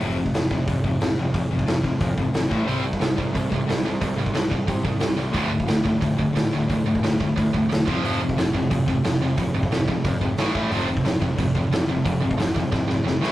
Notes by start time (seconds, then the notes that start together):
0.00 F1 F2 C3 F3, open hi-hat
0.18 F2 C3
0.26 kick
0.33 F1 F2 C3, snare, open hi-hat
0.50 F1 F2 C3, kick
0.67 F1 F2 C3, kick, open hi-hat
0.84 F1 F2 C3, kick
1.00 F1 F2 C3, snare, open hi-hat
1.17 F1 F2 C3
1.33 F1 F2 C3, kick, open hi-hat
1.50 F1 F2 C3
1.59 kick
1.67 F1 F2 C3, snare, open hi-hat
1.83 F2 C3, kick
2.00 F2 C3, kick, open hi-hat
2.18 F1 F2 C3, kick
2.33 G#1 F2 C3, snare, open hi-hat
2.49 A1 A2 E3 A3, kick
2.65 C2 C3 G3 C4, open hi-hat
2.82 C3 G3
2.93 kick
2.99 C2 C3 G3, snare, open hi-hat
3.16 C2 C3 G3, kick
3.33 C2 C3 G3, kick, open hi-hat
3.50 C2 C3 G3, kick
3.66 C2 C3 G3, open hi-hat
3.70 snare
3.83 C2 C3 G3
4.00 C2 C3 G3, kick, open hi-hat
4.16 C2 C3 G3
4.26 kick
4.33 C2 C3 G3, snare, open hi-hat
4.50 C3 G3, kick
4.67 C3 G3, kick, open hi-hat
4.83 C2 C3 G3, kick
5.00 C2 C3 G3, snare, open hi-hat
5.16 C2 C3 G3
5.32 D1 D2 A2 D3, kick, open hi-hat
5.49 D2 A2
5.60 kick
5.66 D1 D2 A2, snare, open hi-hat
5.83 D1 D2 A2, kick
6.01 D1 D2 A2, kick, open hi-hat
6.17 D1 D2 A2, kick
6.33 D1 D2 A2, snare, open hi-hat
6.51 D1 D2 A2
6.68 D1 D2 A2, kick, open hi-hat
6.84 D1 D2 A2
6.95 kick
7.01 D1 D2 A2, snare, open hi-hat
7.20 D2 A2, kick
7.36 D2 A2, kick, open hi-hat
7.53 D1 D2 A2, kick
7.70 E1 D2 A2, snare, open hi-hat
7.87 F1 F2 C3 F3, kick
8.02 F1 F2 C3 F3, open hi-hat
8.20 F2 C3
8.29 kick
8.37 F1 F2 C3, snare, open hi-hat
8.54 F1 F2 C3, kick
8.70 F1 F2 C3, kick, open hi-hat
8.86 F1 F2 C3, kick
9.04 F1 F2 C3, snare, open hi-hat
9.21 F1 F2 C3
9.37 F1 F2 C3, kick, open hi-hat
9.54 F1 F2 C3
9.63 kick
9.70 F1 F2 C3, snare, open hi-hat
9.88 F2 C3, kick
10.04 F2 C3, kick, open hi-hat
10.21 F1 F2 C3, kick
10.37 A1 A2 E3 A3, snare, open hi-hat
10.54 A1 A2 E3 A3, kick
10.70 F1 F2 C3 F3, open hi-hat
10.88 F2 C3
10.97 kick
11.04 F1 F2 C3, snare, open hi-hat
11.20 F1 F2 C3, kick
11.37 F1 F2 C3, kick, open hi-hat
11.55 F1 F2 C3, kick
11.70 F1 F2 C3, snare, open hi-hat
11.87 F1 F2 C3
12.05 F1 F2 C3, kick, open hi-hat
12.21 F1 F2 C3
12.31 kick
12.37 F1 F2 C3, snare, open hi-hat
12.56 F2 C3, kick
12.72 F2 C3, kick, snare
12.87 F1 F2 C3, snare
13.04 F1 F2 C3, snare
13.20 A1 A2 E3 A3, snare